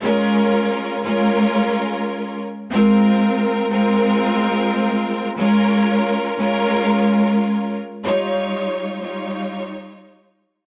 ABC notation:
X:1
M:4/4
L:1/8
Q:"Swing 16ths" 1/4=90
K:Bbdor
V:1 name="String section"
[A,DFB]3 [A,DFB]4 z | [A,CFB]3 [A,CFB]4- [A,CFB] | [A,DFB]3 [A,DFB]4 z | [G,EFd]3 [G,EFd]4- [G,EFd] |]